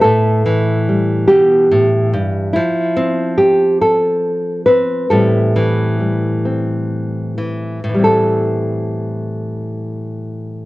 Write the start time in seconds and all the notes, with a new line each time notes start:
Already playing: A3
0.02 A2 A4
0.46 E3
0.88 G3
1.27 B2 G4
1.71 A2
2.13 G2
2.53 F3 E4
2.96 C4
3.38 G4
3.81 A4
4.66 C4 B4
5.10 A2 E3 G3 C4 A4
5.56 E3
6.00 G3
6.45 C4
7.38 E3
7.84 A2
7.89 E3
7.95 G3
7.99 C4
8.04 A4